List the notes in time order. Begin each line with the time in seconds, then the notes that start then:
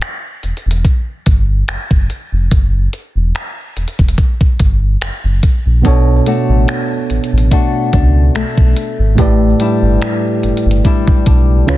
0.02 finger snap, closed hi-hat
0.43 E1, closed hi-hat
0.57 closed hi-hat
0.66 E1
0.71 closed hi-hat
0.85 kick, closed hi-hat
1.26 G1, kick, closed hi-hat
1.68 F#1, finger snap, closed hi-hat
1.91 F#1, kick
2.10 closed hi-hat
2.32 F1
2.51 F#1, kick, closed hi-hat
2.93 closed hi-hat
3.15 E1
3.35 finger snap, closed hi-hat
3.76 E1, closed hi-hat
3.88 closed hi-hat
3.99 E1, kick, closed hi-hat
4.09 closed hi-hat
4.18 kick, closed hi-hat
4.41 kick
4.60 G1, kick, closed hi-hat
5.02 F#1, finger snap, closed hi-hat
5.24 F#1
5.43 kick, closed hi-hat
5.66 A#1
5.82 B1 B2 B3 D4, kick, closed hi-hat
5.87 A4 C#5
6.26 A3 D4 F#4, closed hi-hat
6.49 A1
6.68 finger snap, closed hi-hat
7.10 A1, closed hi-hat
7.24 closed hi-hat
7.33 A1
7.38 closed hi-hat
7.51 A3 D4 F#4, kick, closed hi-hat
7.93 C#2 D4, kick, closed hi-hat
8.35 B1 A3, finger snap, closed hi-hat
8.58 B1, kick
8.77 closed hi-hat
8.99 G#1
9.15 A1 A2 A3 G4, kick, closed hi-hat
9.20 B4 D5
9.60 G3 D4 E4, closed hi-hat
9.82 G1
10.02 finger snap, closed hi-hat
10.43 G1, closed hi-hat
10.57 closed hi-hat
10.66 G1
10.71 closed hi-hat
10.85 G3 D4 E4, kick, closed hi-hat
11.08 kick
11.26 B1 D4, kick, closed hi-hat
11.67 C#2 C#3 C#4 F4 B4 C#5, finger snap, closed hi-hat